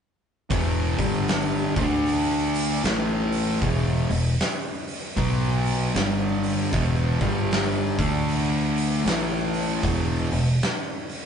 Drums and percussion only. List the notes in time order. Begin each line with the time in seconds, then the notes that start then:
0.50 kick, open hi-hat
0.98 kick, open hi-hat
1.28 snare, open hi-hat
1.76 kick, open hi-hat
2.06 open hi-hat
2.54 open hi-hat
2.84 snare, open hi-hat
3.32 open hi-hat
3.62 kick, open hi-hat
4.10 open hi-hat
4.39 snare, open hi-hat
4.88 open hi-hat
5.17 kick, open hi-hat
5.65 open hi-hat
5.95 snare, open hi-hat
6.43 open hi-hat
6.73 kick, open hi-hat
7.21 kick, open hi-hat
7.51 snare, open hi-hat
7.99 kick, open hi-hat
8.29 open hi-hat
8.76 open hi-hat
9.06 snare, open hi-hat
9.54 open hi-hat
9.83 kick, open hi-hat
10.31 open hi-hat
10.62 snare, open hi-hat
11.09 open hi-hat